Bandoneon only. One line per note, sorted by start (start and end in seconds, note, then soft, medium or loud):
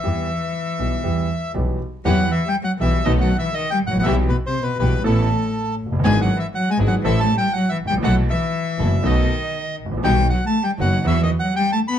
0.00 1.52 E5 medium
2.05 2.31 F#5 loud
2.31 2.48 E5 medium
2.48 2.56 G5 loud
2.64 2.72 F#5 loud
2.81 3.06 E5 medium
3.05 3.12 D#5 loud
3.21 3.37 F#5 medium
3.39 3.54 E5 loud
3.54 3.70 D#5 loud
3.70 3.78 G5 loud
3.87 3.97 F#5 loud
3.99 4.05 F#5 medium
4.03 4.15 E5 loud
4.29 4.36 B4 medium
4.46 4.64 C5 medium
4.63 4.78 B4 medium
4.79 5.03 B4 medium
5.05 5.75 A4 medium
6.04 6.20 G#5 loud
6.21 6.38 F#5 loud
6.40 6.47 E5 medium
6.55 6.70 F#5 loud
6.71 6.78 G#5 loud
6.88 6.95 F#5 medium
7.05 7.20 E5 loud
7.20 7.35 A5 loud
7.38 7.53 G5 loud
7.53 7.70 F#5 loud
7.69 7.77 E5 medium
7.87 7.95 G5 loud
8.04 8.15 F#5 loud
8.30 9.07 E5 medium
9.05 9.76 D#5 medium
10.04 10.28 G5 loud
10.30 10.45 F#5 medium
10.46 10.63 A5 medium
10.64 10.71 G5 medium
10.81 11.06 F#5 loud
11.07 11.21 E5 loud
11.23 11.30 D#5 medium
11.39 11.54 F#5 loud
11.56 11.71 G5 loud
11.72 11.80 A5 loud
11.88 11.99 B5 loud